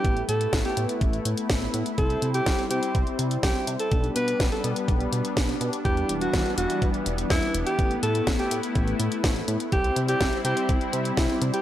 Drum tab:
HH |xxxxxxxxxxxxxxxx|xxxxxxxxxxxxxxxx|xxxxxxxxxxxxxxxx|xxxxxxxxxxxxxxxx|
SD |----o-------o---|----o-------o---|----o-------o---|----o-------o---|
BD |o---o---o---o---|o---o---o---o---|o---o---o---o---|o---o---o---o---|

HH |xxxxxxxxxxxxxxxx|xxxxxxxxxxxxxxxx|
SD |----o-------o---|----o-------o---|
BD |o---o---o---o---|o---o---o---o---|